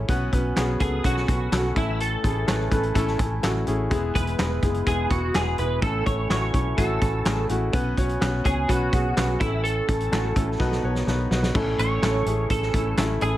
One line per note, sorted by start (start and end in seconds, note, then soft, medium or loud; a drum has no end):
0.00 0.10 A2 soft
0.00 0.09 C#4 medium
0.00 0.31 E4 medium
0.00 0.10 A4 loud
0.00 0.30 C#5 medium
0.08 0.28 B1 medium
0.08 0.77 B2 medium
0.08 1.75 F#3 medium
0.08 0.28 B3 medium
0.08 1.75 B3 medium
0.08 0.28 C#4 medium
0.08 3.88 C#4 medium
0.08 0.28 F#4 medium
0.08 0.28 B4 loud
0.08 kick medium
0.08 closed hi-hat medium
0.32 0.52 B1 medium
0.32 0.51 B3 medium
0.32 0.52 C#4 medium
0.32 0.52 F#4 medium
0.32 0.52 B4 medium
0.32 kick medium
0.32 closed hi-hat medium
0.56 0.76 B1 medium
0.56 0.75 B3 medium
0.56 0.76 C#4 medium
0.56 0.76 F#4 medium
0.56 0.76 G#4 medium
0.56 snare medium
0.56 clap medium
0.56 closed hi-hat medium
0.80 1.00 C#2 medium
0.80 0.99 B3 medium
0.80 1.00 C#4 medium
0.80 1.00 F#4 medium
0.80 1.05 G#4 medium
0.80 1.00 A4 medium
0.80 kick medium
0.80 closed hi-hat medium
1.03 1.24 B1 medium
1.03 1.23 B3 medium
1.03 1.23 C#4 medium
1.03 1.24 F#4 medium
1.03 1.73 F#4 medium
1.03 1.24 B4 loud
1.03 kick medium
1.03 closed hi-hat medium
1.17 snare soft
1.27 1.48 B1 medium
1.27 1.47 B3 medium
1.27 1.47 C#4 soft
1.27 1.48 F#4 soft
1.27 1.48 B4 medium
1.27 kick medium
1.27 closed hi-hat medium
1.51 1.72 B1 loud
1.51 1.71 B3 medium
1.51 1.71 C#4 medium
1.51 1.71 F#4 medium
1.51 1.72 A4 medium
1.51 snare loud
1.51 clap medium
1.51 closed hi-hat medium
1.75 2.15 A1 medium
1.75 2.44 A2 medium
1.75 7.70 E3 medium
1.75 2.14 A3 medium
1.75 3.89 A3 medium
1.75 2.14 C#4 medium
1.75 2.14 E4 medium
1.75 1.99 E4 medium
1.75 2.15 A4 medium
1.75 kick medium
1.75 closed hi-hat medium
2.00 3.64 A4 medium
2.00 closed hi-hat medium
2.23 2.44 A1 medium
2.23 2.43 A3 medium
2.23 2.43 C#4 medium
2.23 2.43 E4 medium
2.23 2.44 G#4 medium
2.23 kick medium
2.23 closed hi-hat medium
2.47 2.67 A1 medium
2.47 2.67 A3 medium
2.47 2.67 C#4 medium
2.47 2.67 E4 medium
2.47 2.67 B4 medium
2.47 snare loud
2.47 clap medium
2.47 closed hi-hat medium
2.71 2.91 A1 medium
2.71 2.90 A3 medium
2.71 2.91 C#4 medium
2.71 2.91 E4 medium
2.71 2.91 B4 medium
2.71 kick medium
2.71 closed hi-hat medium
2.83 closed hi-hat soft
2.94 3.15 A1 medium
2.94 3.14 A3 medium
2.94 3.14 C#4 medium
2.94 3.15 E4 medium
2.94 3.15 A4 loud
2.94 kick medium
2.94 closed hi-hat medium
3.07 snare soft
3.18 3.39 A1 medium
3.18 3.38 A3 medium
3.18 3.38 C#4 medium
3.18 3.39 E4 medium
3.18 3.39 A4 medium
3.18 kick medium
3.18 closed hi-hat medium
3.42 3.63 A1 medium
3.42 3.62 A3 medium
3.42 3.62 C#4 medium
3.42 3.63 E4 medium
3.42 3.63 F#4 medium
3.42 snare medium
3.42 clap medium
3.42 closed hi-hat medium
3.66 3.87 A1 medium
3.66 3.86 A3 medium
3.66 3.86 C#4 medium
3.66 3.87 E4 medium
3.66 3.87 G#4 medium
3.66 closed hi-hat medium
3.90 4.59 E3 medium
3.90 4.10 G#3 medium
3.90 4.10 B3 medium
3.90 5.81 E4 medium
3.90 4.11 E4 medium
3.90 5.81 G#4 medium
3.90 4.11 G#4 loud
3.90 5.81 B4 medium
3.90 kick medium
3.90 closed hi-hat medium
4.14 4.35 E1 medium
4.14 4.34 G#3 medium
4.14 4.34 B3 medium
4.14 4.35 E4 medium
4.14 4.35 G#4 medium
4.14 4.87 B4 medium
4.14 kick medium
4.14 closed hi-hat medium
4.27 closed hi-hat soft
4.38 4.59 E1 medium
4.38 4.58 G#3 medium
4.38 4.58 B3 medium
4.38 4.58 E4 medium
4.38 4.59 G#4 medium
4.38 snare loud
4.38 clap medium
4.38 closed hi-hat medium
4.62 4.82 F#1 medium
4.62 4.82 G#3 medium
4.62 4.82 B3 medium
4.62 4.83 E4 medium
4.62 4.83 G#4 medium
4.62 kick medium
4.62 closed hi-hat medium
4.74 closed hi-hat soft
4.86 5.06 E1 medium
4.86 5.06 G#3 medium
4.86 5.06 B3 medium
4.86 5.06 E4 medium
4.86 5.12 G#4 medium
4.86 5.07 G#4 medium
4.86 kick medium
4.86 closed hi-hat medium
5.10 5.30 E1 loud
5.10 5.30 G#3 medium
5.10 5.30 B3 medium
5.10 5.30 E4 soft
5.10 5.36 F#4 medium
5.10 5.30 G#4 medium
5.10 kick medium
5.10 closed hi-hat medium
5.34 5.54 E1 medium
5.34 5.54 G#3 medium
5.34 5.54 B3 medium
5.34 5.54 E4 medium
5.34 5.54 F#4 medium
5.34 5.58 G#4 medium
5.34 snare medium
5.34 clap medium
5.34 closed hi-hat medium
5.58 5.78 E1 loud
5.58 5.77 G#3 medium
5.58 5.78 B3 medium
5.58 5.78 E4 medium
5.58 5.78 G#4 medium
5.58 5.81 B4 medium
5.58 closed hi-hat medium
5.82 6.02 A1 medium
5.82 6.50 A2 medium
5.82 6.01 A3 medium
5.82 7.72 A3 medium
5.82 6.02 C#4 medium
5.82 7.71 C#4 medium
5.82 6.02 E4 medium
5.82 6.06 A4 medium
5.82 6.02 A4 medium
5.82 kick loud
5.82 closed hi-hat medium
6.06 6.26 A1 medium
6.06 6.25 A3 medium
6.06 6.25 C#4 medium
6.06 6.26 E4 medium
6.06 6.26 A4 medium
6.06 6.29 C#5 medium
6.06 kick medium
6.06 closed hi-hat medium
6.29 6.50 A1 medium
6.29 6.49 A3 medium
6.29 6.49 C#4 medium
6.29 6.49 E4 medium
6.29 6.50 F#4 medium
6.29 6.78 C#5 medium
6.29 snare loud
6.29 clap medium
6.29 closed hi-hat medium
6.53 6.74 B1 medium
6.53 6.73 A3 medium
6.53 6.73 C#4 medium
6.53 6.73 E4 medium
6.53 6.74 A4 medium
6.53 kick medium
6.53 closed hi-hat medium
6.77 6.98 A1 medium
6.77 6.97 A3 medium
6.77 6.97 C#4 medium
6.77 6.97 E4 medium
6.77 6.97 F#4 medium
6.77 7.46 A4 medium
6.77 kick medium
6.77 closed hi-hat medium
7.01 7.21 A1 medium
7.01 7.21 A3 medium
7.01 7.21 C#4 soft
7.01 7.21 E4 medium
7.01 7.21 A4 medium
7.01 kick medium
7.01 closed hi-hat medium
7.25 7.45 A1 medium
7.25 7.45 A3 medium
7.25 7.45 C#4 medium
7.25 7.45 E4 medium
7.25 7.45 G#4 medium
7.25 snare medium
7.25 clap medium
7.25 closed hi-hat medium
7.49 7.69 A1 medium
7.49 7.68 A3 medium
7.49 7.69 C#4 medium
7.49 7.69 E4 medium
7.49 7.69 F#4 medium
7.49 closed hi-hat medium
7.73 8.41 B2 medium
7.73 9.39 F#3 medium
7.73 7.92 B3 loud
7.73 9.39 B3 medium
7.73 10.57 C#4 medium
7.73 7.92 C#4 medium
7.73 7.93 F#4 medium
7.73 7.93 B4 loud
7.73 kick loud
7.73 closed hi-hat medium
7.96 8.17 B1 medium
7.96 8.16 B3 medium
7.96 8.16 C#4 medium
7.96 8.17 F#4 medium
7.96 8.17 C#5 medium
7.96 kick medium
7.96 closed hi-hat medium
8.09 closed hi-hat soft
8.20 8.41 B1 medium
8.20 8.40 B3 medium
8.20 8.40 C#4 medium
8.20 8.41 F#4 medium
8.20 8.41 B4 medium
8.20 snare loud
8.20 clap medium
8.20 closed hi-hat medium
8.44 8.65 C#2 medium
8.44 8.64 B3 medium
8.44 8.64 C#4 medium
8.44 8.64 F#4 medium
8.44 8.70 G#4 medium
8.44 8.65 C#5 medium
8.44 kick medium
8.44 closed hi-hat medium
8.68 8.89 B1 medium
8.68 8.88 B3 medium
8.68 8.88 C#4 medium
8.68 9.42 F#4 medium
8.68 8.88 F#4 medium
8.68 8.89 B4 medium
8.68 kick medium
8.68 closed hi-hat medium
8.92 9.12 B1 medium
8.92 9.12 B3 medium
8.92 9.12 C#4 medium
8.92 9.12 F#4 medium
8.92 9.12 G#4 medium
8.92 kick medium
8.92 closed hi-hat medium
9.16 9.36 B1 medium
9.16 9.35 B3 medium
9.16 9.36 C#4 medium
9.16 9.36 F#4 medium
9.16 9.36 B4 medium
9.16 snare medium
9.16 clap medium
9.16 closed hi-hat medium
9.40 9.80 A1 medium
9.40 10.08 A2 medium
9.40 10.59 E3 medium
9.40 9.79 A3 medium
9.40 10.59 A3 medium
9.40 9.79 C#4 medium
9.40 9.63 E4 medium
9.40 9.79 E4 medium
9.40 9.79 A4 medium
9.40 kick medium
9.40 closed hi-hat medium
9.64 11.27 A4 medium
9.64 closed hi-hat medium
9.87 10.08 A1 loud
9.87 10.07 A3 medium
9.87 10.07 C#4 medium
9.87 10.07 E4 medium
9.87 10.08 A4 medium
9.87 kick medium
9.87 closed hi-hat medium
10.00 closed hi-hat soft
10.11 10.32 A1 medium
10.11 10.31 A3 medium
10.11 10.31 C#4 medium
10.11 10.31 E4 medium
10.11 10.32 F#4 medium
10.11 snare medium
10.11 clap medium
10.11 closed hi-hat medium
10.35 10.56 A1 medium
10.35 10.55 A3 medium
10.35 10.55 C#4 medium
10.35 10.55 E4 medium
10.35 10.56 A4 medium
10.35 kick medium
10.35 closed hi-hat medium
10.59 10.79 B1 medium
10.59 11.27 B2 medium
10.59 11.54 D#3 medium
10.59 11.54 F#3 medium
10.59 11.54 B3 medium
10.59 10.79 B3 medium
10.59 10.79 D#4 medium
10.59 10.79 F#4 medium
10.59 10.79 B4 loud
10.59 kick medium
10.59 snare medium
10.72 snare soft
10.83 11.03 B1 medium
10.83 11.02 B3 medium
10.83 11.03 D#4 medium
10.83 11.03 F#4 medium
10.83 11.03 C#5 medium
10.95 snare medium
11.07 11.27 B1 medium
11.07 11.26 B3 medium
11.07 11.27 D#4 medium
11.07 11.27 F#4 medium
11.07 11.27 B4 medium
11.07 snare medium
11.31 11.50 B1 loud
11.31 11.50 B3 medium
11.31 11.50 D#4 medium
11.31 11.51 F#4 medium
11.31 11.51 B4 medium
11.31 snare medium
11.43 snare medium
11.54 11.75 A1 medium
11.54 12.23 A2 medium
11.54 13.38 E3 medium
11.54 11.74 A3 medium
11.54 13.38 A3 medium
11.54 11.74 C#4 medium
11.54 13.38 C#4 medium
11.54 11.75 E4 medium
11.54 11.75 A4 loud
11.54 kick loud
11.54 crash medium
11.78 11.98 A1 medium
11.78 11.98 A3 medium
11.78 11.98 C#4 medium
11.78 11.99 E4 medium
11.78 11.99 A4 medium
11.78 12.47 C#5 loud
11.78 closed hi-hat medium
12.02 12.22 A1 medium
12.02 12.22 A3 medium
12.02 12.22 C#4 medium
12.02 12.22 E4 medium
12.02 12.23 A4 medium
12.02 snare loud
12.02 clap medium
12.02 closed hi-hat medium
12.26 12.46 A1 medium
12.26 12.46 A3 medium
12.26 12.46 C#4 medium
12.26 12.46 E4 medium
12.26 12.46 G#4 medium
12.26 closed hi-hat medium
12.50 12.70 A1 medium
12.50 12.69 A3 medium
12.50 12.70 C#4 medium
12.50 12.70 E4 medium
12.50 12.95 A4 medium
12.50 12.70 A4 medium
12.50 kick medium
12.50 closed hi-hat medium
12.62 snare soft
12.73 12.93 A1 medium
12.73 12.93 A3 medium
12.73 12.93 C#4 medium
12.73 12.93 E4 medium
12.73 12.94 A4 medium
12.73 kick medium
12.73 closed hi-hat medium
12.97 13.17 A1 medium
12.97 13.17 A3 medium
12.97 13.17 C#4 medium
12.97 13.17 E4 medium
12.97 13.18 A4 medium
12.97 snare loud
12.97 clap medium
12.97 closed hi-hat medium
13.21 13.38 A1 loud
13.21 13.38 A3 medium
13.21 13.38 C#4 medium
13.21 13.38 E4 medium
13.21 13.38 G#4 loud
13.21 13.38 A4 medium
13.21 closed hi-hat medium